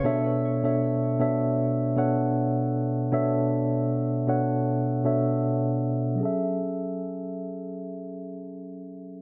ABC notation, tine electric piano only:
X:1
M:4/4
L:1/16
Q:"Swing 16ths" 1/4=78
K:F#m
V:1 name="Tine electric piano"
[B,,B,DAce]3 [B,,B,DAce]3 [B,,B,DAce]3 z [B,,B,DAcf]4- [B,,B,DAcf] z | [B,,B,DAce]4- [B,,B,DAce] z [B,,B,DAcf]3 z [B,,B,DAce]4- [B,,B,DAce] z | [F,CGAe]16 |]